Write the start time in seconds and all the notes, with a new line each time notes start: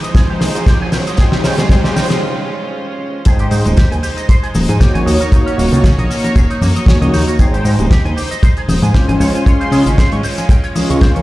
Already playing: G#3 D#4 C5, riser
0.04 D#5, closed hi-hat, cabasa
0.15 G#3 D#4 G#4 C5, kick, snare, closed hi-hat, cabasa
0.30 G4
0.41 D#1 D#4, snare, open hi-hat, cabasa
0.54 G#2 G#3 D#4 G4 C5, closed hi-hat, cabasa
0.66 G4, kick, snare, closed hi-hat, cabasa
0.81 G#1 G#5
0.92 C#2 C#4 F4 G4, snare, open hi-hat, cabasa
1.07 D#5, closed hi-hat, cabasa
1.17 G#3 D#4 G#4 C5 G5, kick, snare, closed hi-hat, cabasa
1.32 G4, snare
1.44 C#3 D#4, snare, open hi-hat, cabasa
1.58 G#1 G#3 D#4 G4 C5, snare, closed hi-hat, cabasa
1.69 G#3 D#4 G#4 C5 G5, kick, snare, closed hi-hat, cabasa
1.84 G#2 G4, snare, cabasa
1.96 D#4, snare, open hi-hat, cabasa
2.10 G#3 D#4 G4 C5, snare, closed hi-hat, cabasa
3.25 G#1 G#3 D#4 G#4 C5 G5, kick, closed hi-hat, cabasa
3.39 G4, closed hi-hat
3.51 G#2 D#4, open hi-hat, cabasa
3.65 D#1 G#3 D#4 G4 C5, closed hi-hat, low conga, cabasa
3.77 G4, kick, snare, closed hi-hat, cabasa
3.91 D#2 G#5, closed hi-hat
4.03 G4, open hi-hat, cabasa
4.17 D#5, closed hi-hat, cabasa
4.29 C5, kick, closed hi-hat, cabasa
4.43 G#4, closed hi-hat
4.55 D#1 D#4, open hi-hat, high conga, cabasa
4.69 G#2 G#5, closed hi-hat, cabasa
4.80 A#3 D#4 F#4 G4 C#5, kick, snare, closed hi-hat, cabasa
4.94 G#1 G#5, closed hi-hat, high conga
5.06 D#2 A#3 D#4 F#4 C#5, open hi-hat, cabasa
5.20 A#4, closed hi-hat, cabasa
5.32 A#3 D#4 F#4 C#5, kick, closed hi-hat, cabasa
5.46 C#4, closed hi-hat
5.58 D#1 A#3, open hi-hat, cabasa
5.72 C#2 D#3 A#3 D#4 F#4 C#5, closed hi-hat, low conga, cabasa
5.84 C#4, kick, snare, closed hi-hat, cabasa
5.98 A#1 D#5, closed hi-hat
6.10 C#4, open hi-hat, cabasa
6.24 A#4, closed hi-hat, muted conga, cabasa
6.36 D#1 G#4, kick, closed hi-hat, cabasa
6.50 D#4, closed hi-hat
6.61 F#2 A#3, open hi-hat, high conga, cabasa
6.76 D#5, closed hi-hat, cabasa
6.86 A#3 C#4 D#4 F#4 C#5, kick, snare, closed hi-hat, cabasa
7.01 C#2 D#5, closed hi-hat, high conga
7.13 D#2 D#4, open hi-hat, cabasa
7.27 A#4, closed hi-hat, cabasa
7.39 G#1 G#3 D#4 G#4 C5 G5, kick, closed hi-hat, cabasa
7.54 G4, closed hi-hat
7.65 G#2 D#4, open hi-hat, cabasa
7.79 D#1 G#3 D#4 G4 C5, closed hi-hat, low conga, cabasa
7.91 G4, kick, snare, closed hi-hat, cabasa
8.05 D#2 G#5, closed hi-hat
8.17 G4, open hi-hat, cabasa
8.31 D#5, closed hi-hat, cabasa
8.43 C5, kick, closed hi-hat, cabasa
8.57 G#4, closed hi-hat
8.68 D#1 D#4, open hi-hat, high conga, cabasa
8.82 G#2 G#5, closed hi-hat, cabasa
8.94 G#3 C#4 F4 G4 C5, kick, snare, closed hi-hat, cabasa
9.08 G#1 G#5, closed hi-hat, high conga
9.20 C#2 C#4 F4 C#5, open hi-hat, cabasa
9.34 G#5, closed hi-hat, cabasa
9.46 G#3 C#4 F4 C#5 C6, kick, closed hi-hat, cabasa
9.61 C5, closed hi-hat
9.72 C#3 G#4, open hi-hat, cabasa
9.86 G#1 G#3 C#4 F4 C5, closed hi-hat, low conga, cabasa
9.98 C5, kick, snare, closed hi-hat, cabasa
10.12 G#2 C#6, closed hi-hat
10.23 C5, open hi-hat, cabasa
10.38 G#5, closed hi-hat, muted conga, cabasa
10.49 G5, kick, closed hi-hat, cabasa
10.64 C#5, closed hi-hat
10.75 G#3 C#4 F4 G#4, open hi-hat, high conga, cabasa
10.90 C#2 C#6, closed hi-hat, cabasa
11.01 C5, kick, snare, closed hi-hat, cabasa
11.15 G#3 C#4 F4 A#4 C#6, closed hi-hat, high conga